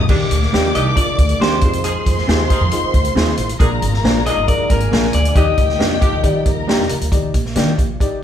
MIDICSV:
0, 0, Header, 1, 11, 480
1, 0, Start_track
1, 0, Key_signature, -3, "major"
1, 0, Tempo, 439883
1, 97, Time_signature, 4, 2, 24, 8
1, 8985, End_track
2, 0, Start_track
2, 0, Title_t, "String section"
2, 0, Program_c, 0, 48
2, 95, Note_on_c, 0, 86, 94
2, 99, Note_on_c, 0, 74, 83
2, 1738, Note_off_c, 0, 86, 0
2, 1741, Note_off_c, 0, 74, 0
2, 1777, Note_on_c, 0, 72, 90
2, 1778, Note_on_c, 0, 84, 102
2, 3888, Note_off_c, 0, 72, 0
2, 3888, Note_off_c, 0, 84, 0
2, 3930, Note_on_c, 0, 70, 82
2, 3932, Note_on_c, 0, 82, 100
2, 5104, Note_off_c, 0, 70, 0
2, 5105, Note_off_c, 0, 82, 0
2, 5122, Note_on_c, 0, 68, 79
2, 5124, Note_on_c, 0, 80, 84
2, 5830, Note_off_c, 0, 68, 0
2, 5831, Note_off_c, 0, 80, 0
2, 5842, Note_on_c, 0, 79, 95
2, 5847, Note_on_c, 0, 67, 83
2, 7022, Note_off_c, 0, 79, 0
2, 7024, Note_off_c, 0, 67, 0
2, 7050, Note_on_c, 0, 70, 75
2, 7052, Note_on_c, 0, 82, 86
2, 7757, Note_off_c, 0, 70, 0
2, 7758, Note_off_c, 0, 82, 0
2, 8985, End_track
3, 0, Start_track
3, 0, Title_t, "Clean electric guitar"
3, 0, Program_c, 1, 27
3, 822, Note_on_c, 1, 75, 104
3, 885, Note_off_c, 1, 75, 0
3, 1054, Note_on_c, 1, 74, 108
3, 1538, Note_off_c, 1, 74, 0
3, 1543, Note_on_c, 1, 72, 90
3, 2015, Note_on_c, 1, 68, 75
3, 2032, Note_off_c, 1, 72, 0
3, 2460, Note_off_c, 1, 68, 0
3, 4655, Note_on_c, 1, 75, 111
3, 4885, Note_off_c, 1, 75, 0
3, 4889, Note_on_c, 1, 74, 106
3, 5136, Note_off_c, 1, 74, 0
3, 5138, Note_on_c, 1, 70, 88
3, 5614, Note_on_c, 1, 74, 92
3, 5627, Note_off_c, 1, 70, 0
3, 5757, Note_off_c, 1, 74, 0
3, 5770, Note_on_c, 1, 74, 72
3, 5847, Note_off_c, 1, 74, 0
3, 5862, Note_on_c, 1, 75, 99
3, 7253, Note_off_c, 1, 75, 0
3, 8985, End_track
4, 0, Start_track
4, 0, Title_t, "Upright piano"
4, 0, Program_c, 2, 0
4, 98, Note_on_c, 2, 62, 81
4, 99, Note_on_c, 2, 63, 78
4, 102, Note_on_c, 2, 67, 91
4, 348, Note_off_c, 2, 62, 0
4, 348, Note_off_c, 2, 63, 0
4, 349, Note_off_c, 2, 67, 0
4, 575, Note_on_c, 2, 62, 91
4, 579, Note_on_c, 2, 63, 80
4, 582, Note_on_c, 2, 67, 97
4, 826, Note_off_c, 2, 62, 0
4, 827, Note_off_c, 2, 63, 0
4, 829, Note_off_c, 2, 67, 0
4, 1052, Note_on_c, 2, 63, 70
4, 1053, Note_on_c, 2, 65, 85
4, 1054, Note_on_c, 2, 62, 70
4, 1303, Note_off_c, 2, 63, 0
4, 1304, Note_off_c, 2, 65, 0
4, 1305, Note_off_c, 2, 62, 0
4, 1535, Note_on_c, 2, 67, 78
4, 1536, Note_on_c, 2, 62, 73
4, 1537, Note_on_c, 2, 63, 64
4, 1761, Note_off_c, 2, 63, 0
4, 1774, Note_off_c, 2, 67, 0
4, 1775, Note_off_c, 2, 62, 0
4, 1778, Note_on_c, 2, 63, 77
4, 1779, Note_on_c, 2, 65, 71
4, 1782, Note_on_c, 2, 68, 86
4, 2350, Note_off_c, 2, 63, 0
4, 2351, Note_off_c, 2, 65, 0
4, 2352, Note_off_c, 2, 68, 0
4, 2488, Note_on_c, 2, 63, 79
4, 2493, Note_on_c, 2, 65, 72
4, 2497, Note_on_c, 2, 67, 78
4, 2740, Note_off_c, 2, 63, 0
4, 2742, Note_off_c, 2, 65, 0
4, 2744, Note_off_c, 2, 67, 0
4, 2967, Note_on_c, 2, 63, 94
4, 2968, Note_on_c, 2, 68, 97
4, 2970, Note_on_c, 2, 65, 83
4, 3219, Note_off_c, 2, 63, 0
4, 3219, Note_off_c, 2, 68, 0
4, 3220, Note_off_c, 2, 65, 0
4, 3449, Note_on_c, 2, 68, 96
4, 3450, Note_on_c, 2, 63, 84
4, 3450, Note_on_c, 2, 65, 81
4, 3700, Note_off_c, 2, 63, 0
4, 3700, Note_off_c, 2, 65, 0
4, 3700, Note_off_c, 2, 68, 0
4, 3934, Note_on_c, 2, 68, 80
4, 3936, Note_on_c, 2, 62, 86
4, 3937, Note_on_c, 2, 70, 97
4, 4182, Note_off_c, 2, 68, 0
4, 4183, Note_off_c, 2, 62, 0
4, 4183, Note_off_c, 2, 70, 0
4, 4411, Note_on_c, 2, 68, 80
4, 4415, Note_on_c, 2, 62, 85
4, 4415, Note_on_c, 2, 72, 95
4, 4660, Note_off_c, 2, 68, 0
4, 4662, Note_off_c, 2, 62, 0
4, 4662, Note_off_c, 2, 72, 0
4, 4889, Note_on_c, 2, 62, 80
4, 4892, Note_on_c, 2, 68, 72
4, 4893, Note_on_c, 2, 70, 84
4, 5139, Note_off_c, 2, 62, 0
4, 5140, Note_off_c, 2, 68, 0
4, 5141, Note_off_c, 2, 70, 0
4, 5365, Note_on_c, 2, 68, 65
4, 5367, Note_on_c, 2, 70, 80
4, 5368, Note_on_c, 2, 62, 72
4, 5617, Note_off_c, 2, 68, 0
4, 5618, Note_off_c, 2, 62, 0
4, 5618, Note_off_c, 2, 70, 0
4, 5845, Note_on_c, 2, 67, 67
4, 5846, Note_on_c, 2, 63, 77
4, 5847, Note_on_c, 2, 74, 80
4, 6097, Note_off_c, 2, 63, 0
4, 6097, Note_off_c, 2, 67, 0
4, 6098, Note_off_c, 2, 74, 0
4, 6325, Note_on_c, 2, 63, 75
4, 6326, Note_on_c, 2, 67, 69
4, 6327, Note_on_c, 2, 74, 85
4, 6577, Note_off_c, 2, 63, 0
4, 6577, Note_off_c, 2, 67, 0
4, 6578, Note_off_c, 2, 74, 0
4, 6797, Note_on_c, 2, 63, 90
4, 6797, Note_on_c, 2, 67, 80
4, 6804, Note_on_c, 2, 74, 99
4, 7053, Note_off_c, 2, 63, 0
4, 7054, Note_off_c, 2, 67, 0
4, 7057, Note_off_c, 2, 74, 0
4, 7284, Note_on_c, 2, 63, 89
4, 7285, Note_on_c, 2, 67, 75
4, 7288, Note_on_c, 2, 74, 89
4, 7538, Note_off_c, 2, 63, 0
4, 7538, Note_off_c, 2, 67, 0
4, 7539, Note_off_c, 2, 74, 0
4, 7767, Note_on_c, 2, 67, 74
4, 7768, Note_on_c, 2, 63, 81
4, 7768, Note_on_c, 2, 74, 83
4, 8020, Note_off_c, 2, 67, 0
4, 8020, Note_off_c, 2, 74, 0
4, 8021, Note_off_c, 2, 63, 0
4, 8243, Note_on_c, 2, 63, 84
4, 8245, Note_on_c, 2, 67, 81
4, 8246, Note_on_c, 2, 74, 90
4, 8499, Note_off_c, 2, 63, 0
4, 8500, Note_off_c, 2, 67, 0
4, 8500, Note_off_c, 2, 74, 0
4, 8733, Note_on_c, 2, 63, 84
4, 8734, Note_on_c, 2, 74, 93
4, 8736, Note_on_c, 2, 67, 81
4, 8985, Note_off_c, 2, 63, 0
4, 8985, Note_off_c, 2, 67, 0
4, 8985, Note_off_c, 2, 74, 0
4, 8985, End_track
5, 0, Start_track
5, 0, Title_t, "Clean electric guitar"
5, 0, Program_c, 3, 27
5, 574, Note_on_c, 3, 58, 76
5, 584, Note_on_c, 3, 62, 94
5, 590, Note_on_c, 3, 67, 98
5, 738, Note_off_c, 3, 58, 0
5, 743, Note_off_c, 3, 62, 0
5, 746, Note_off_c, 3, 67, 0
5, 1528, Note_on_c, 3, 58, 71
5, 1539, Note_on_c, 3, 62, 79
5, 1547, Note_on_c, 3, 67, 81
5, 1694, Note_off_c, 3, 58, 0
5, 1699, Note_off_c, 3, 62, 0
5, 1703, Note_off_c, 3, 67, 0
5, 2482, Note_on_c, 3, 60, 86
5, 2495, Note_on_c, 3, 63, 88
5, 2500, Note_on_c, 3, 68, 99
5, 2650, Note_off_c, 3, 60, 0
5, 2657, Note_off_c, 3, 63, 0
5, 2659, Note_off_c, 3, 68, 0
5, 3441, Note_on_c, 3, 60, 91
5, 3450, Note_on_c, 3, 63, 94
5, 3458, Note_on_c, 3, 68, 93
5, 3608, Note_off_c, 3, 60, 0
5, 3613, Note_off_c, 3, 63, 0
5, 3617, Note_off_c, 3, 68, 0
5, 4404, Note_on_c, 3, 58, 85
5, 4414, Note_on_c, 3, 62, 101
5, 4421, Note_on_c, 3, 68, 91
5, 4569, Note_off_c, 3, 58, 0
5, 4574, Note_off_c, 3, 62, 0
5, 4578, Note_off_c, 3, 68, 0
5, 5363, Note_on_c, 3, 58, 78
5, 5374, Note_on_c, 3, 62, 85
5, 5380, Note_on_c, 3, 68, 97
5, 5528, Note_off_c, 3, 58, 0
5, 5534, Note_off_c, 3, 62, 0
5, 5537, Note_off_c, 3, 68, 0
5, 6318, Note_on_c, 3, 58, 74
5, 6328, Note_on_c, 3, 62, 83
5, 6336, Note_on_c, 3, 67, 88
5, 6486, Note_off_c, 3, 58, 0
5, 6491, Note_off_c, 3, 62, 0
5, 6495, Note_off_c, 3, 67, 0
5, 7281, Note_on_c, 3, 58, 77
5, 7293, Note_on_c, 3, 62, 87
5, 7301, Note_on_c, 3, 67, 91
5, 7449, Note_off_c, 3, 58, 0
5, 7454, Note_off_c, 3, 62, 0
5, 7459, Note_off_c, 3, 67, 0
5, 8245, Note_on_c, 3, 58, 81
5, 8255, Note_on_c, 3, 62, 87
5, 8263, Note_on_c, 3, 67, 88
5, 8412, Note_off_c, 3, 58, 0
5, 8418, Note_off_c, 3, 62, 0
5, 8422, Note_off_c, 3, 67, 0
5, 8985, End_track
6, 0, Start_track
6, 0, Title_t, "Saxophone section"
6, 0, Program_c, 4, 65
6, 98, Note_on_c, 4, 62, 108
6, 99, Note_on_c, 4, 46, 96
6, 102, Note_on_c, 4, 55, 98
6, 174, Note_off_c, 4, 62, 0
6, 175, Note_off_c, 4, 46, 0
6, 177, Note_off_c, 4, 55, 0
6, 820, Note_on_c, 4, 62, 87
6, 822, Note_on_c, 4, 51, 87
6, 824, Note_on_c, 4, 67, 94
6, 971, Note_off_c, 4, 62, 0
6, 972, Note_off_c, 4, 51, 0
6, 974, Note_off_c, 4, 67, 0
6, 2007, Note_on_c, 4, 53, 95
6, 2007, Note_on_c, 4, 63, 91
6, 2008, Note_on_c, 4, 68, 105
6, 2085, Note_off_c, 4, 53, 0
6, 2085, Note_off_c, 4, 63, 0
6, 2086, Note_off_c, 4, 68, 0
6, 2730, Note_on_c, 4, 63, 93
6, 2733, Note_on_c, 4, 68, 98
6, 2734, Note_on_c, 4, 53, 94
6, 2883, Note_off_c, 4, 63, 0
6, 2885, Note_off_c, 4, 68, 0
6, 2886, Note_off_c, 4, 53, 0
6, 3924, Note_on_c, 4, 53, 97
6, 3925, Note_on_c, 4, 62, 97
6, 3928, Note_on_c, 4, 68, 111
6, 4002, Note_off_c, 4, 53, 0
6, 4003, Note_off_c, 4, 62, 0
6, 4005, Note_off_c, 4, 68, 0
6, 4653, Note_on_c, 4, 62, 94
6, 4655, Note_on_c, 4, 53, 88
6, 4657, Note_on_c, 4, 68, 98
6, 4804, Note_off_c, 4, 62, 0
6, 4806, Note_off_c, 4, 53, 0
6, 4807, Note_off_c, 4, 68, 0
6, 5846, Note_on_c, 4, 51, 94
6, 5850, Note_on_c, 4, 67, 111
6, 5853, Note_on_c, 4, 62, 93
6, 5923, Note_off_c, 4, 51, 0
6, 5926, Note_off_c, 4, 67, 0
6, 5928, Note_off_c, 4, 62, 0
6, 6564, Note_on_c, 4, 62, 91
6, 6565, Note_on_c, 4, 51, 90
6, 6565, Note_on_c, 4, 67, 101
6, 6718, Note_off_c, 4, 62, 0
6, 6719, Note_off_c, 4, 51, 0
6, 6719, Note_off_c, 4, 67, 0
6, 8985, End_track
7, 0, Start_track
7, 0, Title_t, "Vibraphone"
7, 0, Program_c, 5, 11
7, 818, Note_on_c, 5, 63, 76
7, 925, Note_off_c, 5, 63, 0
7, 1051, Note_on_c, 5, 62, 92
7, 1498, Note_off_c, 5, 62, 0
7, 1529, Note_on_c, 5, 60, 73
7, 1977, Note_off_c, 5, 60, 0
7, 2008, Note_on_c, 5, 56, 68
7, 2456, Note_off_c, 5, 56, 0
7, 4649, Note_on_c, 5, 63, 82
7, 4871, Note_off_c, 5, 63, 0
7, 4891, Note_on_c, 5, 62, 94
7, 5113, Note_off_c, 5, 62, 0
7, 5129, Note_on_c, 5, 58, 83
7, 5575, Note_off_c, 5, 58, 0
7, 5602, Note_on_c, 5, 62, 79
7, 5747, Note_off_c, 5, 62, 0
7, 5760, Note_on_c, 5, 62, 63
7, 5836, Note_off_c, 5, 62, 0
7, 5841, Note_on_c, 5, 63, 78
7, 7242, Note_off_c, 5, 63, 0
7, 8985, End_track
8, 0, Start_track
8, 0, Title_t, "Tonewheel organ"
8, 0, Program_c, 6, 16
8, 0, Note_on_c, 6, 51, 73
8, 0, Note_on_c, 6, 68, 72
8, 102, Note_on_c, 6, 58, 62
8, 103, Note_on_c, 6, 62, 66
8, 1746, Note_off_c, 6, 68, 0
8, 1759, Note_off_c, 6, 58, 0
8, 1760, Note_off_c, 6, 62, 0
8, 1769, Note_on_c, 6, 60, 64
8, 1770, Note_on_c, 6, 65, 80
8, 1774, Note_on_c, 6, 56, 66
8, 3894, Note_off_c, 6, 51, 0
8, 3906, Note_off_c, 6, 60, 0
8, 3908, Note_off_c, 6, 56, 0
8, 3938, Note_on_c, 6, 53, 71
8, 3939, Note_on_c, 6, 58, 64
8, 3942, Note_on_c, 6, 56, 60
8, 5805, Note_off_c, 6, 65, 0
8, 5835, Note_off_c, 6, 56, 0
8, 5854, Note_on_c, 6, 63, 78
8, 5856, Note_on_c, 6, 55, 63
8, 7736, Note_off_c, 6, 53, 0
8, 7737, Note_off_c, 6, 58, 0
8, 7754, Note_off_c, 6, 63, 0
8, 7755, Note_off_c, 6, 55, 0
8, 8985, End_track
9, 0, Start_track
9, 0, Title_t, "Upright bass"
9, 0, Program_c, 7, 32
9, 99, Note_on_c, 7, 39, 108
9, 276, Note_off_c, 7, 39, 0
9, 339, Note_on_c, 7, 38, 93
9, 516, Note_off_c, 7, 38, 0
9, 586, Note_on_c, 7, 39, 93
9, 760, Note_off_c, 7, 39, 0
9, 817, Note_on_c, 7, 36, 94
9, 994, Note_off_c, 7, 36, 0
9, 1293, Note_on_c, 7, 38, 90
9, 1471, Note_off_c, 7, 38, 0
9, 1532, Note_on_c, 7, 39, 93
9, 1771, Note_off_c, 7, 39, 0
9, 1771, Note_on_c, 7, 41, 93
9, 2128, Note_off_c, 7, 41, 0
9, 2254, Note_on_c, 7, 41, 96
9, 2431, Note_off_c, 7, 41, 0
9, 2489, Note_on_c, 7, 39, 95
9, 2757, Note_off_c, 7, 39, 0
9, 2845, Note_on_c, 7, 41, 99
9, 2937, Note_off_c, 7, 41, 0
9, 3208, Note_on_c, 7, 38, 91
9, 3387, Note_off_c, 7, 38, 0
9, 3446, Note_on_c, 7, 39, 89
9, 3626, Note_off_c, 7, 39, 0
9, 3684, Note_on_c, 7, 33, 89
9, 3864, Note_off_c, 7, 33, 0
9, 3928, Note_on_c, 7, 34, 106
9, 4106, Note_off_c, 7, 34, 0
9, 4168, Note_on_c, 7, 32, 87
9, 4346, Note_off_c, 7, 32, 0
9, 4413, Note_on_c, 7, 34, 99
9, 4678, Note_off_c, 7, 34, 0
9, 4771, Note_on_c, 7, 31, 83
9, 4859, Note_off_c, 7, 31, 0
9, 5127, Note_on_c, 7, 32, 94
9, 5306, Note_off_c, 7, 32, 0
9, 5366, Note_on_c, 7, 34, 97
9, 5545, Note_off_c, 7, 34, 0
9, 5606, Note_on_c, 7, 38, 90
9, 5785, Note_off_c, 7, 38, 0
9, 5845, Note_on_c, 7, 39, 110
9, 6025, Note_off_c, 7, 39, 0
9, 6091, Note_on_c, 7, 38, 84
9, 6268, Note_off_c, 7, 38, 0
9, 6326, Note_on_c, 7, 41, 91
9, 6594, Note_off_c, 7, 41, 0
9, 6682, Note_on_c, 7, 39, 87
9, 6774, Note_off_c, 7, 39, 0
9, 6806, Note_on_c, 7, 51, 92
9, 6986, Note_off_c, 7, 51, 0
9, 7051, Note_on_c, 7, 39, 86
9, 7229, Note_off_c, 7, 39, 0
9, 7404, Note_on_c, 7, 41, 82
9, 7496, Note_off_c, 7, 41, 0
9, 7529, Note_on_c, 7, 37, 85
9, 7619, Note_off_c, 7, 37, 0
9, 7650, Note_on_c, 7, 38, 74
9, 7740, Note_off_c, 7, 38, 0
9, 7769, Note_on_c, 7, 39, 103
9, 7948, Note_off_c, 7, 39, 0
9, 8012, Note_on_c, 7, 34, 86
9, 8246, Note_on_c, 7, 51, 99
9, 8262, Note_off_c, 7, 34, 0
9, 8427, Note_off_c, 7, 51, 0
9, 8492, Note_on_c, 7, 34, 84
9, 8672, Note_off_c, 7, 34, 0
9, 8985, End_track
10, 0, Start_track
10, 0, Title_t, "Muted upright bass strokes"
10, 1174, Note_on_c, 9, 29, 47
10, 1283, Note_off_c, 9, 29, 0
10, 3087, Note_on_c, 9, 29, 48
10, 3196, Note_off_c, 9, 29, 0
10, 5008, Note_on_c, 9, 29, 51
10, 5117, Note_off_c, 9, 29, 0
10, 8856, Note_on_c, 9, 29, 43
10, 8965, Note_off_c, 9, 29, 0
10, 8985, End_track
11, 0, Start_track
11, 0, Title_t, "Drums"
11, 97, Note_on_c, 9, 49, 83
11, 98, Note_on_c, 9, 36, 106
11, 206, Note_off_c, 9, 49, 0
11, 207, Note_off_c, 9, 36, 0
11, 336, Note_on_c, 9, 42, 81
11, 445, Note_off_c, 9, 42, 0
11, 460, Note_on_c, 9, 38, 34
11, 569, Note_off_c, 9, 38, 0
11, 589, Note_on_c, 9, 38, 101
11, 698, Note_off_c, 9, 38, 0
11, 818, Note_on_c, 9, 42, 78
11, 927, Note_off_c, 9, 42, 0
11, 1054, Note_on_c, 9, 36, 87
11, 1055, Note_on_c, 9, 42, 89
11, 1163, Note_off_c, 9, 36, 0
11, 1164, Note_off_c, 9, 42, 0
11, 1293, Note_on_c, 9, 42, 66
11, 1294, Note_on_c, 9, 36, 92
11, 1402, Note_off_c, 9, 42, 0
11, 1403, Note_off_c, 9, 36, 0
11, 1405, Note_on_c, 9, 42, 55
11, 1514, Note_off_c, 9, 42, 0
11, 1547, Note_on_c, 9, 38, 101
11, 1656, Note_off_c, 9, 38, 0
11, 1760, Note_on_c, 9, 42, 81
11, 1770, Note_on_c, 9, 36, 109
11, 1869, Note_off_c, 9, 42, 0
11, 1879, Note_off_c, 9, 36, 0
11, 1891, Note_on_c, 9, 42, 55
11, 2000, Note_off_c, 9, 42, 0
11, 2006, Note_on_c, 9, 42, 94
11, 2115, Note_off_c, 9, 42, 0
11, 2250, Note_on_c, 9, 42, 79
11, 2252, Note_on_c, 9, 36, 86
11, 2359, Note_off_c, 9, 42, 0
11, 2361, Note_off_c, 9, 36, 0
11, 2374, Note_on_c, 9, 38, 38
11, 2483, Note_off_c, 9, 38, 0
11, 2498, Note_on_c, 9, 38, 109
11, 2607, Note_off_c, 9, 38, 0
11, 2728, Note_on_c, 9, 42, 80
11, 2731, Note_on_c, 9, 36, 97
11, 2837, Note_off_c, 9, 42, 0
11, 2840, Note_off_c, 9, 36, 0
11, 2962, Note_on_c, 9, 42, 85
11, 3071, Note_off_c, 9, 42, 0
11, 3206, Note_on_c, 9, 42, 63
11, 3208, Note_on_c, 9, 36, 90
11, 3315, Note_off_c, 9, 42, 0
11, 3318, Note_off_c, 9, 36, 0
11, 3323, Note_on_c, 9, 42, 51
11, 3432, Note_off_c, 9, 42, 0
11, 3461, Note_on_c, 9, 38, 101
11, 3570, Note_off_c, 9, 38, 0
11, 3579, Note_on_c, 9, 38, 35
11, 3682, Note_on_c, 9, 42, 79
11, 3688, Note_off_c, 9, 38, 0
11, 3791, Note_off_c, 9, 42, 0
11, 3810, Note_on_c, 9, 42, 55
11, 3919, Note_off_c, 9, 42, 0
11, 3928, Note_on_c, 9, 36, 119
11, 3930, Note_on_c, 9, 42, 87
11, 4037, Note_off_c, 9, 36, 0
11, 4039, Note_off_c, 9, 42, 0
11, 4170, Note_on_c, 9, 42, 76
11, 4279, Note_off_c, 9, 42, 0
11, 4293, Note_on_c, 9, 38, 35
11, 4402, Note_off_c, 9, 38, 0
11, 4421, Note_on_c, 9, 38, 105
11, 4530, Note_off_c, 9, 38, 0
11, 4651, Note_on_c, 9, 42, 73
11, 4760, Note_off_c, 9, 42, 0
11, 4889, Note_on_c, 9, 36, 92
11, 4889, Note_on_c, 9, 42, 87
11, 4998, Note_off_c, 9, 36, 0
11, 4998, Note_off_c, 9, 42, 0
11, 5126, Note_on_c, 9, 42, 66
11, 5128, Note_on_c, 9, 36, 91
11, 5235, Note_off_c, 9, 42, 0
11, 5237, Note_off_c, 9, 36, 0
11, 5241, Note_on_c, 9, 42, 54
11, 5350, Note_off_c, 9, 42, 0
11, 5380, Note_on_c, 9, 38, 109
11, 5489, Note_off_c, 9, 38, 0
11, 5493, Note_on_c, 9, 38, 36
11, 5598, Note_on_c, 9, 42, 83
11, 5602, Note_off_c, 9, 38, 0
11, 5707, Note_off_c, 9, 42, 0
11, 5730, Note_on_c, 9, 42, 55
11, 5839, Note_off_c, 9, 42, 0
11, 5842, Note_on_c, 9, 42, 88
11, 5844, Note_on_c, 9, 36, 114
11, 5951, Note_off_c, 9, 42, 0
11, 5953, Note_off_c, 9, 36, 0
11, 6084, Note_on_c, 9, 42, 78
11, 6087, Note_on_c, 9, 36, 88
11, 6193, Note_off_c, 9, 42, 0
11, 6197, Note_off_c, 9, 36, 0
11, 6210, Note_on_c, 9, 38, 35
11, 6319, Note_off_c, 9, 38, 0
11, 6333, Note_on_c, 9, 38, 101
11, 6443, Note_off_c, 9, 38, 0
11, 6567, Note_on_c, 9, 36, 106
11, 6567, Note_on_c, 9, 42, 79
11, 6676, Note_off_c, 9, 42, 0
11, 6677, Note_off_c, 9, 36, 0
11, 6805, Note_on_c, 9, 36, 89
11, 6805, Note_on_c, 9, 42, 81
11, 6914, Note_off_c, 9, 36, 0
11, 6914, Note_off_c, 9, 42, 0
11, 7044, Note_on_c, 9, 42, 65
11, 7047, Note_on_c, 9, 36, 89
11, 7153, Note_off_c, 9, 42, 0
11, 7156, Note_off_c, 9, 36, 0
11, 7303, Note_on_c, 9, 38, 106
11, 7412, Note_off_c, 9, 38, 0
11, 7423, Note_on_c, 9, 38, 35
11, 7520, Note_on_c, 9, 42, 82
11, 7532, Note_off_c, 9, 38, 0
11, 7629, Note_off_c, 9, 42, 0
11, 7653, Note_on_c, 9, 42, 56
11, 7762, Note_off_c, 9, 42, 0
11, 7768, Note_on_c, 9, 36, 105
11, 7771, Note_on_c, 9, 42, 86
11, 7877, Note_off_c, 9, 36, 0
11, 7880, Note_off_c, 9, 42, 0
11, 8010, Note_on_c, 9, 42, 76
11, 8012, Note_on_c, 9, 36, 73
11, 8119, Note_off_c, 9, 42, 0
11, 8121, Note_off_c, 9, 36, 0
11, 8135, Note_on_c, 9, 38, 35
11, 8244, Note_off_c, 9, 38, 0
11, 8245, Note_on_c, 9, 42, 91
11, 8263, Note_on_c, 9, 38, 102
11, 8354, Note_off_c, 9, 42, 0
11, 8372, Note_off_c, 9, 38, 0
11, 8495, Note_on_c, 9, 36, 93
11, 8496, Note_on_c, 9, 42, 67
11, 8604, Note_off_c, 9, 36, 0
11, 8605, Note_off_c, 9, 42, 0
11, 8734, Note_on_c, 9, 36, 88
11, 8738, Note_on_c, 9, 42, 80
11, 8843, Note_off_c, 9, 36, 0
11, 8847, Note_off_c, 9, 42, 0
11, 8985, End_track
0, 0, End_of_file